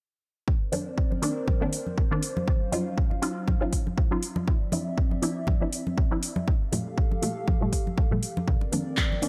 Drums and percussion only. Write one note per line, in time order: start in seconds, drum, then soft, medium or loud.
0.48 kick loud
0.73 open hi-hat medium
0.73 high conga medium
0.98 kick loud
1.12 high conga medium
1.23 open hi-hat loud
1.48 kick loud
1.48 high conga medium
1.73 open hi-hat loud
1.87 high conga medium
1.98 kick loud
2.23 open hi-hat loud
2.37 high conga medium
2.48 kick loud
2.73 open hi-hat loud
2.73 high conga medium
2.98 kick loud
3.11 high conga medium
3.23 open hi-hat loud
3.48 kick loud
3.48 high conga medium
3.73 kick medium
3.73 open hi-hat loud
3.87 high conga medium
3.98 kick loud
4.23 open hi-hat loud
4.36 high conga loud
4.48 kick loud
4.72 open hi-hat loud
4.72 high conga loud
4.98 kick loud
5.11 high conga medium
5.23 open hi-hat loud
5.47 kick loud
5.47 high conga medium
5.73 open hi-hat loud
5.87 high conga medium
5.98 kick loud
6.23 open hi-hat loud
6.36 high conga medium
6.48 kick loud
6.72 open hi-hat loud
6.72 high conga loud
6.98 kick loud
7.12 high conga medium
7.23 open hi-hat loud
7.48 kick loud
7.48 high conga medium
7.73 kick medium
7.73 open hi-hat loud
7.87 high conga medium
7.98 kick loud
8.23 open hi-hat loud
8.37 high conga medium
8.48 kick loud
8.48 low conga medium
8.61 muted conga soft
8.72 open hi-hat loud
8.72 high conga medium
8.97 kick loud
8.97 clap loud
8.97 muted conga medium
9.12 high conga medium
9.22 open hi-hat loud
9.22 muted conga soft